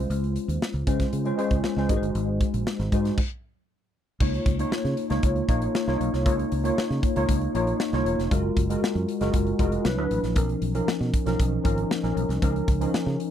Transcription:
Already playing: tine electric piano G#3 C#4 F4 C5
0.10 fingered electric bass C#2, closed hi-hat
0.24 closed hi-hat
0.36 closed hi-hat
0.48 fingered electric bass D#2, closed hi-hat
0.62 snare
0.74 fingered electric bass C#2, closed hi-hat
0.87 fingered electric bass C#3, tine electric piano G#3 C#4 F4 C5, kick, closed hi-hat
1.00 kick, snare, closed hi-hat
1.13 fingered electric bass C#3, closed hi-hat
1.25 tine electric piano G#3 C#4 F4 C5, closed hi-hat
1.38 tine electric piano G#3 C#4 F4 C5, closed hi-hat
1.50 fingered electric bass C#2, kick, closed hi-hat
1.64 snare
1.76 fingered electric bass C#2, tine electric piano G#3 C#4 F4 C5, snare
1.89 fingered electric bass G#1, tine electric piano G#3 D#4 F#4 A#4, kick, closed hi-hat
1.96 tine electric piano C5
2.02 fingered electric bass G1, closed hi-hat
2.15 fingered electric bass G#1, closed hi-hat
2.41 kick, closed hi-hat
2.54 fingered electric bass A#1, closed hi-hat
2.67 snare
2.79 fingered electric bass G#1, snare, closed hi-hat
2.92 fingered electric bass G#2, tine electric piano G#3 D#4 F#4 C5, kick, closed hi-hat
3.05 snare, closed hi-hat
3.18 kick, crash
4.20 fingered electric bass C#2, tine electric piano A#3 D#4 F4 C#5, kick, crash
4.34 closed hi-hat
4.46 fingered electric bass C#2, kick, closed hi-hat
4.59 tine electric piano A#3 D#4 F4 C#5, closed hi-hat
4.71 muted fingered electric bass stroke, snare
4.85 fingered electric bass C#3, snare, closed hi-hat
4.97 closed hi-hat
5.09 fingered electric bass C#2, tine electric piano A#3 D#4 F4 C#5, snare, closed hi-hat
5.23 fingered electric bass C#2, kick, closed hi-hat
5.36 closed hi-hat
5.48 fingered electric bass A#1, tine electric piano A#3 D#4 F4 C#5, kick, closed hi-hat
5.62 closed hi-hat
5.75 snare
5.87 fingered electric bass C2, tine electric piano A#3 D#4 F4 C#5, snare
6.00 fingered electric bass B1, closed hi-hat
6.13 fingered electric bass C2, snare, closed hi-hat
6.25 fingered electric bass C#2, tine electric piano A#3 D#4 F4 C#5, kick, closed hi-hat
6.39 closed hi-hat
6.52 fingered electric bass C#2, closed hi-hat
6.64 tine electric piano A#3 D#4 F4 C#5, closed hi-hat
6.78 muted fingered electric bass stroke, snare
6.90 fingered electric bass C#3, snare, closed hi-hat
7.03 kick, closed hi-hat
7.16 fingered electric bass C#2, tine electric piano A#3 D#4 F4 C#5, closed hi-hat
7.29 fingered electric bass C#2, kick, closed hi-hat
7.41 closed hi-hat
7.55 fingered electric bass A#1, tine electric piano A#3 D#4 F4 C#5, closed hi-hat
7.67 closed hi-hat
7.80 snare
7.93 fingered electric bass C2, tine electric piano A#3 D#4 F4 C#5, snare, closed hi-hat
8.05 fingered electric bass E1, closed hi-hat
8.19 fingered electric bass F1, snare, closed hi-hat
8.31 fingered electric bass F#1, tine electric piano G#3 F4 F#4 A#4, kick, closed hi-hat
8.57 fingered electric bass F#1, kick, closed hi-hat
8.70 tine electric piano G#3 F4 F#4 A#4, closed hi-hat
8.82 muted fingered electric bass stroke, snare
8.95 fingered electric bass F#2, closed hi-hat
9.09 closed hi-hat
9.21 fingered electric bass F#1, tine electric piano G#3 F4 F#4 A#4, snare, closed hi-hat
9.33 fingered electric bass F#1, kick, closed hi-hat
9.47 closed hi-hat
9.59 fingered electric bass F1, tine electric piano G#3 F4 F#4 A#4, kick, closed hi-hat
9.72 closed hi-hat
9.85 fingered electric bass C2, tine electric piano F#3 D4 E4 B4, snare
9.97 fingered electric bass D2, tine electric piano F#3 D4 E4 B4
10.11 fingered electric bass A1, closed hi-hat
10.23 fingered electric bass A#1, snare, closed hi-hat
10.35 fingered electric bass B1, tine electric piano F3 C#4 D#4 A#4, kick, closed hi-hat
10.49 closed hi-hat
10.62 fingered electric bass B1, closed hi-hat
10.74 tine electric piano F3 C#4 D#4 A#4, closed hi-hat
10.88 muted fingered electric bass stroke, snare
11.01 fingered electric bass B2, snare, closed hi-hat
11.14 kick, closed hi-hat
11.25 fingered electric bass B1, tine electric piano F3 C#4 D#4 A#4, snare, closed hi-hat
11.40 fingered electric bass B1, kick, closed hi-hat
11.64 fingered electric bass G#1, tine electric piano F3 C#4 D#4 A#4, kick, closed hi-hat
11.78 closed hi-hat
11.91 snare
12.03 fingered electric bass A#1, tine electric piano F3 C#4 D#4 A#4, snare, closed hi-hat
12.16 fingered electric bass B1, closed hi-hat
12.29 fingered electric bass C2, snare, closed hi-hat
12.42 fingered electric bass C#2, tine electric piano F3 C#4 D#4 A#4, kick, closed hi-hat
12.56 closed hi-hat
12.68 fingered electric bass C#2, kick, closed hi-hat
12.80 tine electric piano F3 C#4 D#4 A#4, closed hi-hat
12.94 muted fingered electric bass stroke, snare
13.06 fingered electric bass C#3, snare
13.20 closed hi-hat

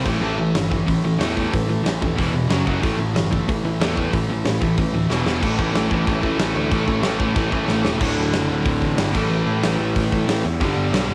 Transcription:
0.05 picked electric bass A1, distorted electric guitar A2 E3 A3, kick, crash
0.21 picked electric bass A1, distorted electric guitar A2 E3 A3
0.38 picked electric bass A1, distorted electric guitar A2 E3
0.55 picked electric bass G1, distorted electric guitar A2 E3, snare, open hi-hat
0.70 distorted electric guitar A2 E3 A3, kick
0.88 picked electric bass A1, distorted electric guitar A2 E3, kick, open hi-hat
1.03 picked electric bass A1, distorted electric guitar A2 E3
1.19 picked electric bass E2, distorted electric guitar A2 E3 A3, snare, open hi-hat
1.37 distorted electric guitar A2 E3 A3, kick
1.53 picked electric bass A1, distorted electric guitar A2 E3 A3, kick, open hi-hat
1.67 picked electric bass A1, distorted electric guitar A2 E3
1.83 picked electric bass A1, distorted electric guitar A2 E3, snare, open hi-hat
2.02 picked electric bass D#1, distorted electric guitar A2 E3 A3, kick
2.17 picked electric bass E1, distorted electric guitar E2 B2 E3, kick, open hi-hat
2.32 picked electric bass E1, distorted electric guitar E2 B2
2.48 picked electric bass F#1, distorted electric guitar F#2 C#3 F#3, snare, open hi-hat
2.66 picked electric bass F#1, distorted electric guitar F#2 C#3 F#3, kick
2.82 picked electric bass A1, distorted electric guitar A2 E3 A3, kick, open hi-hat
2.97 picked electric bass A1, distorted electric guitar A2 E3
3.14 picked electric bass G1, distorted electric guitar A2 E3, snare, open hi-hat
3.31 distorted electric guitar A2 E3 A3, kick
3.48 picked electric bass A1, distorted electric guitar A2 E3, kick, open hi-hat
3.63 picked electric bass A1, distorted electric guitar A2 E3
3.80 picked electric bass E2, distorted electric guitar A2 E3 A3, snare, open hi-hat
3.96 distorted electric guitar A2 E3 A3, kick
4.13 picked electric bass A1, distorted electric guitar A2 E3 A3, kick, open hi-hat
4.29 picked electric bass A1, distorted electric guitar A2 E3
4.45 picked electric bass A1, distorted electric guitar A2 E3, snare, open hi-hat
4.61 picked electric bass A1, distorted electric guitar A2 E3 A3, kick
4.78 picked electric bass A1, distorted electric guitar A2 E3, kick, open hi-hat
4.93 picked electric bass D1, distorted electric guitar A2 E3
5.10 picked electric bass E1, distorted electric guitar E2 B2 E3, snare
5.26 picked electric bass E1, distorted electric guitar E2 B2 E3, snare
5.42 picked electric bass A1, distorted electric guitar A2 E3 A3, kick, crash
5.59 picked electric bass A1, distorted electric guitar A2 E3 A3, kick
5.73 picked electric bass A1, distorted electric guitar A2 E3 A3, snare, crash
5.91 picked electric bass A1, distorted electric guitar A2 E3 A3, kick
6.06 picked electric bass A1, distorted electric guitar A2 E3 A3, kick, crash
6.22 picked electric bass A1, distorted electric guitar A2 E3 A3, kick
6.39 picked electric bass A1, distorted electric guitar A2 E3 A3, snare, crash
6.55 picked electric bass D2, distorted electric guitar A2 E3 A3
6.71 picked electric bass A1, distorted electric guitar A2 E3 A3, kick, crash
6.88 picked electric bass A1, distorted electric guitar A2 E3 A3, kick
7.03 picked electric bass A1, distorted electric guitar A2 E3 A3, snare, crash
7.20 picked electric bass A1, distorted electric guitar A2 E3 A3, kick
7.36 picked electric bass A1, distorted electric guitar A2 E3 A3, kick, crash
7.52 picked electric bass A1, distorted electric guitar A2 E3 A3, kick
7.68 picked electric bass A1, distorted electric guitar A2 E3 A3, snare
7.84 picked electric bass E1, distorted electric guitar A2 E3 A3, snare
8.00 picked electric bass D1, distorted electric guitar D2 A2 D3, kick, crash
8.18 picked electric bass D1
8.33 picked electric bass F#1, snare, open hi-hat
8.48 picked electric bass D1, distorted electric guitar D2 A2 D3
8.65 picked electric bass D1, kick, open hi-hat
8.81 picked electric bass A1, kick
8.97 picked electric bass G1, distorted electric guitar D2 A2 D3, snare, open hi-hat
9.14 picked electric bass A1, distorted electric guitar A2 E3 A3, kick, crash
9.30 picked electric bass A1
9.47 picked electric bass A2
9.62 picked electric bass A1, distorted electric guitar A2 E3 A3, snare, open hi-hat
9.79 picked electric bass A1
9.96 picked electric bass A1, kick, open hi-hat
10.11 picked electric bass A1, distorted electric guitar A2 E3 A3, kick
10.27 picked electric bass A1, distorted electric guitar A2 E3 A3, snare, open hi-hat
10.45 picked electric bass E2
10.60 picked electric bass G1, distorted electric guitar G2 D3 G3, kick, open hi-hat
10.77 picked electric bass G1
10.93 picked electric bass B1, snare, open hi-hat
11.08 picked electric bass G1, distorted electric guitar D3 G3

